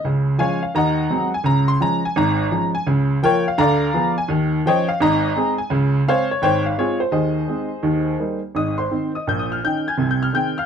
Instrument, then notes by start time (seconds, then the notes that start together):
upright piano
0.05 C#2 C#3
0.38 F3 G#3 C#4 C#5 F5 G#5
0.63 F5
0.75 D#2 D#3 D#5 F#5 A#5
1.11 F#3 G#3 C4
1.34 G#5
1.44 C#2 C#3 A#5
1.68 C6
1.80 F3 G#3 C#4 A#5
2.05 G#5
2.16 G#1 G#2 A#5
2.52 F3 G#3 C#4
2.75 G#5
2.87 C#2 C#3
3.23 F3 A#3 F4 A#4 C#5 G5
3.48 F5
3.58 D2 D3 D5 F5 A#5
3.94 F3 B3 G#4
4.18 G#5
4.28 D#2 D#3
4.66 F3 C#4 C5 C#5 D#5 G5
4.89 F5
5.00 G#1 G#2 D#5 A#5
5.36 G#3 C4 G#4
5.58 G#5
5.70 C#2 C#3
6.07 G#3 C4 G#4 C5 C#5 F5
6.31 C#5
6.42 G#1 G#2 C5 C#5 G5
6.66 F5
6.78 G#3 C4 F4 G#4 C#5
7.00 C5
7.12 D#2 D#3 G#4 C5 D#5
7.48 G#3 C4 D#4
7.83 D#2 D#3
8.20 G3 A#3 D#4
8.55 G#1 G#2 D#5 D#6
8.78 C5 C6
8.91 D#3 C4 D#4
9.15 D#5 D#6
9.27 A#1 A#2 G6
9.39 D#6
9.52 F6
9.64 D#3 C#4 D#4 G5 G6
9.88 G#5 G#6
9.97 C2 C3
10.11 G6
10.23 F6
10.33 D#3 C4 G#4 G5 G6
10.58 F5 F6